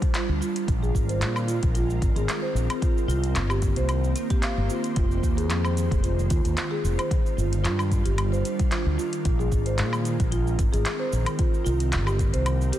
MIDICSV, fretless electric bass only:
0, 0, Header, 1, 2, 480
1, 0, Start_track
1, 0, Tempo, 535714
1, 607, Time_signature, 4, 2, 24, 8
1, 11458, End_track
2, 0, Start_track
2, 0, Title_t, "Fretless electric bass"
2, 0, Program_c, 0, 35
2, 259, Note_on_c, 0, 38, 81
2, 350, Note_off_c, 0, 38, 0
2, 610, Note_on_c, 0, 34, 90
2, 811, Note_off_c, 0, 34, 0
2, 850, Note_on_c, 0, 32, 91
2, 1084, Note_on_c, 0, 46, 87
2, 1097, Note_off_c, 0, 32, 0
2, 1419, Note_off_c, 0, 46, 0
2, 1458, Note_on_c, 0, 34, 80
2, 1777, Note_off_c, 0, 34, 0
2, 1810, Note_on_c, 0, 32, 96
2, 1916, Note_off_c, 0, 32, 0
2, 1932, Note_on_c, 0, 32, 100
2, 2026, Note_off_c, 0, 32, 0
2, 2281, Note_on_c, 0, 34, 87
2, 2392, Note_off_c, 0, 34, 0
2, 2758, Note_on_c, 0, 36, 88
2, 3001, Note_on_c, 0, 31, 92
2, 3014, Note_off_c, 0, 36, 0
2, 3338, Note_off_c, 0, 31, 0
2, 3374, Note_on_c, 0, 36, 74
2, 3695, Note_off_c, 0, 36, 0
2, 4099, Note_on_c, 0, 31, 80
2, 4189, Note_off_c, 0, 31, 0
2, 4449, Note_on_c, 0, 29, 98
2, 4650, Note_off_c, 0, 29, 0
2, 4689, Note_on_c, 0, 39, 83
2, 4930, Note_off_c, 0, 39, 0
2, 4930, Note_on_c, 0, 41, 90
2, 5262, Note_off_c, 0, 41, 0
2, 5299, Note_on_c, 0, 29, 81
2, 5618, Note_off_c, 0, 29, 0
2, 5651, Note_on_c, 0, 39, 96
2, 5757, Note_off_c, 0, 39, 0
2, 5774, Note_on_c, 0, 39, 98
2, 5867, Note_off_c, 0, 39, 0
2, 6129, Note_on_c, 0, 29, 83
2, 6235, Note_off_c, 0, 29, 0
2, 6609, Note_on_c, 0, 31, 84
2, 6848, Note_on_c, 0, 43, 89
2, 6862, Note_off_c, 0, 31, 0
2, 7182, Note_off_c, 0, 43, 0
2, 7218, Note_on_c, 0, 31, 86
2, 7538, Note_off_c, 0, 31, 0
2, 7939, Note_on_c, 0, 38, 90
2, 8029, Note_off_c, 0, 38, 0
2, 8293, Note_on_c, 0, 34, 102
2, 8492, Note_off_c, 0, 34, 0
2, 8531, Note_on_c, 0, 32, 86
2, 8774, Note_on_c, 0, 46, 93
2, 8787, Note_off_c, 0, 32, 0
2, 9104, Note_off_c, 0, 46, 0
2, 9138, Note_on_c, 0, 34, 80
2, 9457, Note_off_c, 0, 34, 0
2, 9488, Note_on_c, 0, 32, 95
2, 9595, Note_off_c, 0, 32, 0
2, 9618, Note_on_c, 0, 32, 102
2, 9709, Note_off_c, 0, 32, 0
2, 9970, Note_on_c, 0, 34, 82
2, 10076, Note_off_c, 0, 34, 0
2, 10449, Note_on_c, 0, 36, 83
2, 10693, Note_on_c, 0, 31, 91
2, 10707, Note_off_c, 0, 36, 0
2, 11024, Note_off_c, 0, 31, 0
2, 11060, Note_on_c, 0, 36, 86
2, 11378, Note_off_c, 0, 36, 0
2, 11458, End_track
0, 0, End_of_file